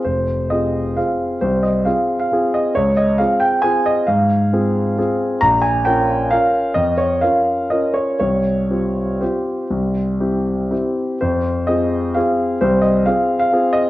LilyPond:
\new Staff \with { instrumentName = "Grand piano" } { \time 3/4 \key f \minor \tempo 4 = 131 << { c''4 ees''4 f''4 | c''8 ees''8 f''8. f''8. ees''8 | des''8 ees''8 f''8 g''8 aes''8 ees''8 | f''2~ f''8 r8 |
bes''8 aes''8 g''4 f''4 | ees''8 des''8 f''4 ees''8 des''8 | des''2 c''4~ | c''2~ c''8 r8 |
c''4 ees''4 f''4 | c''8 ees''8 f''8. f''8. ees''8 | } \\ { f,,4 <c' f' aes'>4 <c' f' aes'>4 | c,4 <c' f' aes'>4 <c' f' aes'>4 | des,4 <c' f' aes'>4 <c' f' aes'>4 | aes,4 <c' f' aes'>4 <c' f' aes'>4 |
bes,,4 <des' f' bes'>4 <des' f' bes'>4 | f,4 <des' f' bes'>4 <des' f' bes'>4 | c,4 <c' f' g'>4 <c' f' g'>4 | c,4 <c' e' g'>4 <c' e' g'>4 |
f,4 <c' f' aes'>4 <c' f' aes'>4 | c,4 <c' f' aes'>4 <c' f' aes'>4 | } >> }